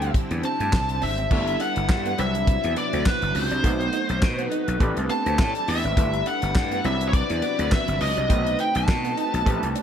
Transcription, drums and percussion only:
0.02 closed hi-hat medium
0.14 kick loud
0.14 closed hi-hat medium
0.31 closed hi-hat medium
0.43 closed hi-hat medium
0.60 closed hi-hat medium
0.73 kick loud
0.73 snare loud
0.73 clap loud
0.89 closed hi-hat medium
1.02 open hi-hat medium
1.18 closed hi-hat soft
1.31 kick loud
1.31 crash loud
1.47 closed hi-hat soft
1.60 closed hi-hat medium
1.76 closed hi-hat medium
1.89 kick loud
1.89 snare loud
1.89 clap loud
2.05 closed hi-hat medium
2.18 closed hi-hat medium
2.35 closed hi-hat medium
2.47 kick loud
2.47 closed hi-hat medium
2.64 closed hi-hat medium
2.76 closed hi-hat medium
2.93 closed hi-hat medium
3.06 kick loud
3.06 snare loud
3.06 clap loud
3.22 closed hi-hat medium
3.35 open hi-hat medium
3.51 closed hi-hat soft
3.64 kick loud
3.64 closed hi-hat loud
3.80 closed hi-hat soft
3.93 closed hi-hat medium
4.09 closed hi-hat medium
4.22 kick loud
4.22 snare loud
4.22 clap medium
4.39 closed hi-hat soft
4.51 closed hi-hat medium
4.68 closed hi-hat medium
4.80 kick loud
4.80 closed hi-hat medium
4.97 closed hi-hat medium
5.09 closed hi-hat medium
5.26 closed hi-hat medium
5.39 kick loud
5.39 snare loud
5.39 clap loud
5.55 closed hi-hat medium
5.68 open hi-hat medium
5.84 closed hi-hat soft
5.97 kick loud
5.97 closed hi-hat loud
6.14 closed hi-hat soft
6.26 closed hi-hat medium
6.42 closed hi-hat medium
6.55 kick loud
6.55 snare loud
6.55 clap loud
6.71 closed hi-hat medium
6.84 closed hi-hat medium
7.01 closed hi-hat medium
7.13 kick loud
7.13 closed hi-hat loud
7.30 closed hi-hat medium
7.42 closed hi-hat medium
7.59 closed hi-hat medium
7.72 kick loud
7.72 snare loud
7.72 clap loud
7.88 closed hi-hat medium
8.01 open hi-hat medium
8.17 closed hi-hat soft
8.30 kick loud
8.30 closed hi-hat loud
8.46 closed hi-hat soft
8.59 closed hi-hat medium
8.75 closed hi-hat medium
8.88 kick loud
8.88 snare loud
8.88 clap medium
9.04 closed hi-hat medium
9.17 closed hi-hat medium
9.34 closed hi-hat medium
9.46 kick loud
9.46 closed hi-hat loud
9.63 closed hi-hat medium
9.76 closed hi-hat medium

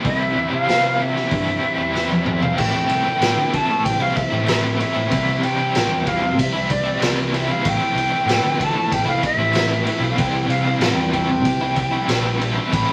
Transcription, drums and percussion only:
0.05 kick loud
0.05 open hi-hat soft
0.68 snare loud
0.68 open hi-hat soft
0.68 tambourine loud
1.16 snare soft
1.31 kick loud
1.31 open hi-hat soft
1.95 snare medium
1.95 tambourine medium
2.11 high tom medium
2.26 mid tom medium
2.42 floor tom medium
2.58 kick loud
2.58 crash loud
2.89 ride medium
3.21 snare loud
3.21 ride medium
3.21 tambourine loud
3.53 kick medium
3.53 ride medium
3.85 kick medium
3.85 ride medium
4.16 kick medium
4.16 ride medium
4.47 snare loud
4.47 ride medium
4.47 tambourine loud
4.80 ride medium
5.11 kick loud
5.11 ride medium
5.43 ride medium
5.75 snare loud
5.75 ride medium
5.75 tambourine loud
6.07 kick medium
6.07 ride medium
6.39 kick medium
6.39 ride medium
6.70 kick medium
6.70 ride medium
7.01 snare loud
7.01 ride medium
7.01 tambourine medium
7.34 snare soft
7.34 ride medium
7.65 kick loud
7.65 ride medium
7.98 ride medium
8.28 snare loud
8.28 ride medium
8.28 tambourine loud
8.60 kick medium
8.60 ride medium
8.92 kick medium
8.92 ride medium
9.23 kick medium
9.23 ride medium
9.53 snare loud
9.53 ride medium
9.53 tambourine loud
9.87 ride medium
10.18 kick loud
10.18 ride medium
10.50 ride medium
10.81 snare loud
10.81 ride medium
10.81 tambourine loud
11.13 kick medium
11.13 ride medium
11.45 kick medium
11.45 ride medium
11.76 kick medium
11.76 ride medium
12.08 snare loud
12.08 ride medium
12.08 tambourine loud
12.41 ride medium
12.73 kick loud
12.73 ride medium

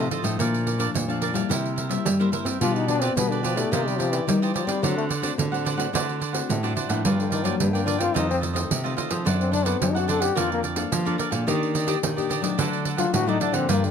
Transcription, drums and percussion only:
0.11 pandeiro medium
0.24 pandeiro medium
0.40 pandeiro medium
0.54 pandeiro soft
0.67 pandeiro soft
0.80 pandeiro medium
0.95 pandeiro medium
1.10 pandeiro soft
1.22 pandeiro medium
1.35 pandeiro medium
1.51 pandeiro medium
1.66 pandeiro soft
1.78 pandeiro medium
1.91 pandeiro medium
2.06 pandeiro medium
2.21 pandeiro soft
2.33 pandeiro medium
2.46 pandeiro medium
2.61 pandeiro medium
2.76 pandeiro soft
2.88 pandeiro medium
3.02 pandeiro medium
3.17 pandeiro medium
3.32 pandeiro soft
3.44 pandeiro medium
3.57 pandeiro medium
3.73 pandeiro medium
3.88 pandeiro soft
4.00 pandeiro medium
4.13 pandeiro medium
4.29 pandeiro medium
4.43 pandeiro soft
4.56 pandeiro medium
4.69 pandeiro medium
4.84 pandeiro medium
4.98 pandeiro soft
5.11 pandeiro medium
5.23 pandeiro medium
5.39 pandeiro medium
5.54 pandeiro soft
5.66 pandeiro medium
5.80 pandeiro medium
5.95 pandeiro medium
6.09 pandeiro soft
6.21 pandeiro soft
6.34 pandeiro medium
6.50 pandeiro medium
6.64 pandeiro soft
6.77 pandeiro medium
6.90 pandeiro medium
7.05 pandeiro medium
7.20 pandeiro soft
7.32 pandeiro medium
7.45 pandeiro medium
7.60 pandeiro medium
7.75 pandeiro soft
7.88 pandeiro medium
8.01 pandeiro medium
8.16 pandeiro medium
8.31 pandeiro soft
8.43 pandeiro medium
8.56 pandeiro medium
8.71 pandeiro medium
8.86 pandeiro soft
8.98 pandeiro medium
9.11 pandeiro medium
9.27 pandeiro medium
9.41 pandeiro soft
9.53 pandeiro medium
9.66 pandeiro medium
9.82 pandeiro medium
9.96 pandeiro soft
10.09 pandeiro medium
10.22 pandeiro medium
10.37 pandeiro medium
10.52 pandeiro soft
10.64 pandeiro medium
10.76 pandeiro medium
10.92 pandeiro medium
11.07 pandeiro soft
11.19 pandeiro medium
11.32 pandeiro medium
11.48 pandeiro medium
11.63 pandeiro soft
11.75 pandeiro medium
11.88 pandeiro medium
12.03 pandeiro medium
12.18 pandeiro soft
12.31 pandeiro medium
12.44 pandeiro medium
12.59 pandeiro medium
12.73 pandeiro soft
12.85 pandeiro medium
12.98 pandeiro medium
13.14 pandeiro medium
13.29 pandeiro soft
13.41 pandeiro medium
13.54 pandeiro medium
13.69 pandeiro medium
13.84 pandeiro soft

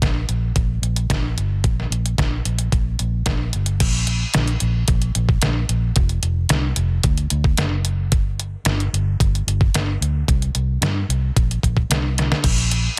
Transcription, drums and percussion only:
0.02 kick loud
0.02 snare loud
0.02 closed hi-hat medium
0.29 closed hi-hat medium
0.56 kick medium
0.56 closed hi-hat medium
0.83 closed hi-hat medium
0.96 closed hi-hat medium
1.10 kick loud
1.10 snare loud
1.10 closed hi-hat medium
1.38 closed hi-hat medium
1.64 kick loud
1.64 closed hi-hat medium
1.80 snare soft
1.92 closed hi-hat medium
2.06 closed hi-hat medium
2.18 kick loud
2.18 snare loud
2.18 closed hi-hat medium
2.45 closed hi-hat medium
2.58 closed hi-hat medium
2.72 kick loud
2.72 closed hi-hat medium
2.99 closed hi-hat medium
3.26 kick loud
3.26 snare loud
3.26 closed hi-hat medium
3.53 closed hi-hat medium
3.66 closed hi-hat medium
3.80 kick loud
3.80 closed hi-hat medium
3.80 crash loud
4.07 closed hi-hat medium
4.34 snare loud
4.34 closed hi-hat loud
4.47 closed hi-hat soft
4.60 closed hi-hat medium
4.88 kick loud
4.88 closed hi-hat medium
5.02 closed hi-hat soft
5.15 closed hi-hat medium
5.29 kick medium
5.42 snare loud
5.42 closed hi-hat loud
5.69 closed hi-hat medium
5.96 kick loud
5.96 closed hi-hat loud
6.09 closed hi-hat soft
6.23 closed hi-hat medium
6.49 snare loud
6.49 closed hi-hat loud
6.76 closed hi-hat medium
7.03 kick loud
7.03 closed hi-hat loud
7.17 closed hi-hat soft
7.30 closed hi-hat medium
7.44 kick medium
7.57 snare loud
7.57 closed hi-hat loud
7.85 closed hi-hat medium
8.12 kick loud
8.12 closed hi-hat loud
8.40 closed hi-hat medium
8.65 snare loud
8.65 closed hi-hat loud
8.80 closed hi-hat soft
8.94 closed hi-hat medium
9.20 kick loud
9.20 closed hi-hat loud
9.35 closed hi-hat soft
9.48 closed hi-hat medium
9.61 kick medium
9.74 snare loud
9.74 closed hi-hat loud
10.02 closed hi-hat medium
10.28 kick loud
10.28 closed hi-hat medium
10.42 closed hi-hat soft
10.55 closed hi-hat medium
10.82 snare loud
10.82 closed hi-hat loud
11.10 closed hi-hat medium
11.36 kick loud
11.36 closed hi-hat loud
11.51 closed hi-hat soft
11.63 kick medium
11.63 closed hi-hat medium
11.77 kick medium
11.91 snare loud
11.91 closed hi-hat loud
12.18 snare medium
12.18 closed hi-hat medium
12.32 snare medium
12.44 kick loud
12.44 closed hi-hat medium
12.44 crash loud
12.58 closed hi-hat soft
12.71 closed hi-hat medium

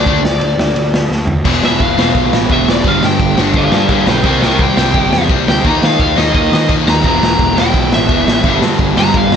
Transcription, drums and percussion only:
0.06 kick loud
0.06 ride medium
0.25 snare loud
0.41 ride medium
0.59 snare loud
0.76 ride medium
0.94 snare loud
1.12 snare medium
1.27 floor tom loud
1.45 kick loud
1.45 crash loud
1.45 crash medium
1.63 snare loud
1.80 kick loud
1.80 crash medium
1.99 snare loud
2.15 kick loud
2.15 crash medium
2.33 snare loud
2.50 kick loud
2.50 crash medium
2.69 snare loud
2.84 kick loud
2.84 crash medium
3.03 snare loud
3.20 kick loud
3.20 crash medium
3.38 snare loud
3.54 kick loud
3.54 crash medium
3.72 snare loud
3.89 kick loud
3.89 crash medium
4.07 snare loud
4.24 kick loud
4.24 crash medium
4.42 snare loud
4.59 kick loud
4.59 crash medium
4.77 snare loud
4.94 kick loud
4.94 crash medium
5.13 snare loud
5.30 kick loud
5.30 crash medium
5.48 snare loud
5.65 kick loud
5.65 crash medium
5.83 snare loud
6.00 kick loud
6.00 crash medium
6.18 snare loud
6.35 kick loud
6.35 crash medium
6.53 snare loud
6.69 kick loud
6.69 crash medium
6.88 snare loud
7.04 kick loud
7.04 crash medium
7.23 snare loud
7.39 kick loud
7.39 crash medium
7.58 snare loud
7.74 kick loud
7.74 crash medium
7.93 snare loud
8.09 kick loud
8.09 crash medium
8.28 snare loud
8.44 kick loud
8.44 crash medium
8.62 snare loud
8.79 kick loud
8.79 crash medium
8.97 snare loud
9.14 kick loud
9.14 crash medium
9.32 snare loud

